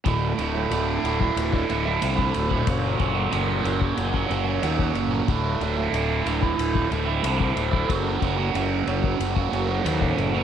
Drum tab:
RD |x-x-x-x-x-x-x-x-|x-x-x-x-x-x-x-x-|x-x-x-x-x-x-x-x-|x-x-x-x-x-x-x-x-|
BD |o------o-o---o-o|o-o----o-o---o--|o------o-o---o-o|o-o----o-o---o--|